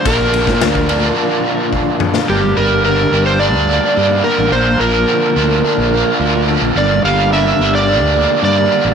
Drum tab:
RD |x-x-x-x---------|----------------|----------------|----------------|
SD |---oo----------o|----------------|----------------|----------------|
T2 |--------------o-|----------------|----------------|----------------|
BD |o--o-o------o---|----------------|----------------|----------------|